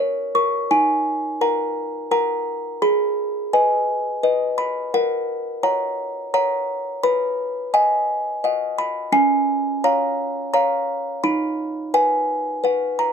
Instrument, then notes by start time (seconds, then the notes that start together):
music box
Already playing: F#4 A#4 F#5
0.00 C#5
0.35 A#4 C#6
0.71 D#4 G#5
1.41 A#4 F#5 A#5
2.11 A#4 F#5 A#5
2.82 G#4 B5
3.53 B4 D#5 G#5
4.23 B4 D#5
4.58 B5
4.94 A#4 F#5
5.63 C#5 F#5 A#5
6.34 C#5 F#5 A#5
7.03 B4 B5
7.74 D#5 F#5 G#5
8.44 D#5 F#5
8.78 B5
9.12 C#4 G#5
9.84 C#5 F5 A#5
10.54 C#5 F5 A#5
11.24 D#4 B5
11.94 B4 F#5 G#5
12.64 B4 F#5
12.99 A#5